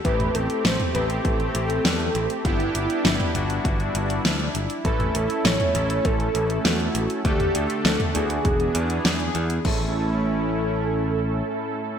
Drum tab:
CC |----------------|----------------|----------------|----------------|
HH |xxxxxxxxxxxxxxxx|xxxxxxxxxxxxxxxx|xxxxxxxxxxxxxxxx|xxxxxxxxxxxxxxxx|
SD |----o-------o---|----o-------o---|----o-------o---|----o-------o---|
T2 |-o---o----------|-----o----------|-o---o----------|-o---o----------|
BD |o-------o-------|o-------o-------|o-------o-------|o-------o-------|

CC |x---------------|
HH |----------------|
SD |----------------|
T2 |----------------|
BD |o---------------|